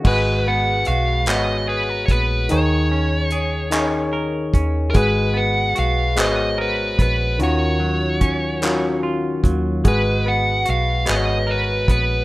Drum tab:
CC |x-----|------|------|------|
HH |--xx-x|x-xx-x|x-xx-x|x-xx-x|
CP |---x--|---x--|---x--|---x--|
BD |o----o|-----o|o----o|--o--o|

CC |------|
HH |x-xx-x|
CP |---x--|
BD |o----o|